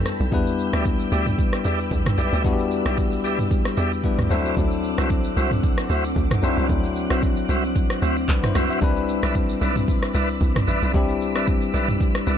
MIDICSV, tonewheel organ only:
0, 0, Header, 1, 2, 480
1, 0, Start_track
1, 0, Key_signature, 1, "minor"
1, 0, Tempo, 530973
1, 292, Time_signature, 4, 2, 24, 8
1, 11191, End_track
2, 0, Start_track
2, 0, Title_t, "Tonewheel organ"
2, 0, Program_c, 0, 16
2, 661, Note_on_c, 0, 67, 78
2, 664, Note_on_c, 0, 74, 75
2, 667, Note_on_c, 0, 76, 87
2, 771, Note_off_c, 0, 67, 0
2, 773, Note_off_c, 0, 74, 0
2, 774, Note_off_c, 0, 76, 0
2, 1010, Note_on_c, 0, 67, 83
2, 1012, Note_on_c, 0, 74, 78
2, 1015, Note_on_c, 0, 76, 86
2, 1143, Note_off_c, 0, 67, 0
2, 1144, Note_off_c, 0, 74, 0
2, 1146, Note_off_c, 0, 76, 0
2, 1491, Note_on_c, 0, 67, 81
2, 1493, Note_on_c, 0, 74, 72
2, 1496, Note_on_c, 0, 76, 86
2, 1624, Note_off_c, 0, 67, 0
2, 1625, Note_off_c, 0, 74, 0
2, 1626, Note_off_c, 0, 76, 0
2, 1969, Note_on_c, 0, 67, 76
2, 1972, Note_on_c, 0, 74, 75
2, 1975, Note_on_c, 0, 76, 87
2, 2193, Note_off_c, 0, 67, 0
2, 2194, Note_off_c, 0, 74, 0
2, 2196, Note_off_c, 0, 76, 0
2, 2581, Note_on_c, 0, 67, 80
2, 2584, Note_on_c, 0, 74, 78
2, 2587, Note_on_c, 0, 76, 94
2, 2691, Note_off_c, 0, 67, 0
2, 2693, Note_off_c, 0, 74, 0
2, 2694, Note_off_c, 0, 76, 0
2, 2929, Note_on_c, 0, 67, 83
2, 2932, Note_on_c, 0, 74, 79
2, 2935, Note_on_c, 0, 76, 88
2, 3063, Note_off_c, 0, 67, 0
2, 3064, Note_off_c, 0, 74, 0
2, 3066, Note_off_c, 0, 76, 0
2, 3410, Note_on_c, 0, 67, 80
2, 3413, Note_on_c, 0, 74, 73
2, 3416, Note_on_c, 0, 76, 87
2, 3544, Note_off_c, 0, 67, 0
2, 3545, Note_off_c, 0, 74, 0
2, 3546, Note_off_c, 0, 76, 0
2, 3889, Note_on_c, 0, 66, 82
2, 3892, Note_on_c, 0, 72, 76
2, 3895, Note_on_c, 0, 76, 86
2, 4113, Note_off_c, 0, 66, 0
2, 4115, Note_off_c, 0, 72, 0
2, 4116, Note_off_c, 0, 76, 0
2, 4501, Note_on_c, 0, 66, 81
2, 4504, Note_on_c, 0, 72, 76
2, 4507, Note_on_c, 0, 76, 94
2, 4611, Note_off_c, 0, 66, 0
2, 4613, Note_off_c, 0, 72, 0
2, 4614, Note_off_c, 0, 76, 0
2, 4850, Note_on_c, 0, 66, 82
2, 4852, Note_on_c, 0, 72, 75
2, 4855, Note_on_c, 0, 76, 88
2, 4983, Note_off_c, 0, 66, 0
2, 4985, Note_off_c, 0, 72, 0
2, 4986, Note_off_c, 0, 76, 0
2, 5330, Note_on_c, 0, 66, 81
2, 5332, Note_on_c, 0, 72, 75
2, 5335, Note_on_c, 0, 76, 89
2, 5464, Note_off_c, 0, 66, 0
2, 5465, Note_off_c, 0, 72, 0
2, 5466, Note_off_c, 0, 76, 0
2, 5811, Note_on_c, 0, 66, 80
2, 5813, Note_on_c, 0, 72, 72
2, 5817, Note_on_c, 0, 76, 90
2, 6034, Note_off_c, 0, 66, 0
2, 6035, Note_off_c, 0, 72, 0
2, 6037, Note_off_c, 0, 76, 0
2, 6422, Note_on_c, 0, 66, 79
2, 6425, Note_on_c, 0, 72, 74
2, 6427, Note_on_c, 0, 76, 89
2, 6532, Note_off_c, 0, 66, 0
2, 6533, Note_off_c, 0, 72, 0
2, 6534, Note_off_c, 0, 76, 0
2, 6770, Note_on_c, 0, 66, 84
2, 6773, Note_on_c, 0, 72, 76
2, 6776, Note_on_c, 0, 76, 91
2, 6903, Note_off_c, 0, 66, 0
2, 6905, Note_off_c, 0, 72, 0
2, 6906, Note_off_c, 0, 76, 0
2, 7249, Note_on_c, 0, 66, 79
2, 7252, Note_on_c, 0, 72, 74
2, 7254, Note_on_c, 0, 76, 88
2, 7383, Note_off_c, 0, 66, 0
2, 7385, Note_off_c, 0, 72, 0
2, 7385, Note_off_c, 0, 76, 0
2, 7729, Note_on_c, 0, 66, 79
2, 7732, Note_on_c, 0, 72, 72
2, 7735, Note_on_c, 0, 76, 92
2, 7953, Note_off_c, 0, 66, 0
2, 7955, Note_off_c, 0, 72, 0
2, 7956, Note_off_c, 0, 76, 0
2, 8342, Note_on_c, 0, 71, 83
2, 8344, Note_on_c, 0, 74, 74
2, 8347, Note_on_c, 0, 76, 92
2, 8451, Note_off_c, 0, 71, 0
2, 8453, Note_off_c, 0, 74, 0
2, 8454, Note_off_c, 0, 76, 0
2, 8690, Note_on_c, 0, 71, 80
2, 8693, Note_on_c, 0, 74, 73
2, 8695, Note_on_c, 0, 76, 90
2, 8823, Note_off_c, 0, 71, 0
2, 8825, Note_off_c, 0, 74, 0
2, 8826, Note_off_c, 0, 76, 0
2, 9170, Note_on_c, 0, 71, 82
2, 9173, Note_on_c, 0, 74, 73
2, 9175, Note_on_c, 0, 76, 88
2, 9303, Note_off_c, 0, 71, 0
2, 9305, Note_off_c, 0, 74, 0
2, 9306, Note_off_c, 0, 76, 0
2, 9650, Note_on_c, 0, 71, 82
2, 9653, Note_on_c, 0, 74, 73
2, 9655, Note_on_c, 0, 76, 88
2, 9874, Note_off_c, 0, 71, 0
2, 9875, Note_off_c, 0, 74, 0
2, 9876, Note_off_c, 0, 76, 0
2, 10263, Note_on_c, 0, 71, 83
2, 10265, Note_on_c, 0, 74, 77
2, 10268, Note_on_c, 0, 76, 93
2, 10372, Note_off_c, 0, 71, 0
2, 10373, Note_off_c, 0, 74, 0
2, 10374, Note_off_c, 0, 76, 0
2, 10611, Note_on_c, 0, 71, 83
2, 10613, Note_on_c, 0, 74, 73
2, 10616, Note_on_c, 0, 76, 94
2, 10744, Note_off_c, 0, 71, 0
2, 10745, Note_off_c, 0, 74, 0
2, 10746, Note_off_c, 0, 76, 0
2, 11091, Note_on_c, 0, 71, 82
2, 11094, Note_on_c, 0, 74, 72
2, 11096, Note_on_c, 0, 76, 87
2, 11191, Note_off_c, 0, 71, 0
2, 11191, Note_off_c, 0, 74, 0
2, 11191, Note_off_c, 0, 76, 0
2, 11191, End_track
0, 0, End_of_file